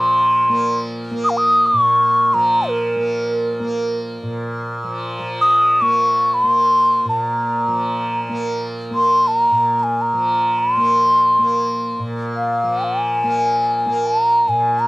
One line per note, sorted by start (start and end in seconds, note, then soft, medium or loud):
0.00 1.73 A#2 medium
0.00 2.34 F3 medium
0.00 0.49 A#3 medium
0.00 0.79 C6 medium
0.49 1.11 A#3 medium
1.11 2.96 A#3 medium
1.24 1.31 D#6 loud
1.29 1.39 F5 medium
1.38 1.68 D#6 loud
1.66 2.35 C#6 loud
1.73 4.23 A#2 medium
2.34 4.83 F3 medium
2.34 2.70 A#5 loud
2.69 4.00 A#4 medium
2.96 3.60 A#3 medium
3.60 5.81 A#3 medium
4.23 7.05 A#2 medium
4.84 5.19 F3 medium
5.19 7.68 F3 medium
5.41 5.83 D#6 medium
5.81 6.43 A#3 medium
5.81 6.35 C#6 medium
6.34 6.47 B5 medium
6.43 8.29 A#3 medium
6.43 7.08 C6 medium
7.05 9.51 A#2 medium
7.05 8.66 A#5 medium
7.68 10.13 F3 soft
8.29 8.91 A#3 medium
8.91 10.77 A#3 medium
8.91 9.29 C6 medium
9.27 9.80 A#5 medium
9.51 11.99 A#2 soft
9.80 10.03 G#5 medium
9.80 9.84 A#5 medium
10.01 10.60 A#5 medium
10.13 12.63 F3 medium
10.59 12.00 C6 medium
10.77 11.39 A#3 medium
11.39 13.24 A#3 medium
11.99 14.48 A#2 medium
12.36 12.85 F5 medium
12.63 14.88 F3 medium
12.84 14.08 G#5 medium
13.24 13.86 A#3 medium
13.86 14.88 A#3 medium
14.07 14.50 A#5 loud
14.48 14.88 A#2 medium
14.48 14.81 G#5 medium
14.80 14.88 A#5 medium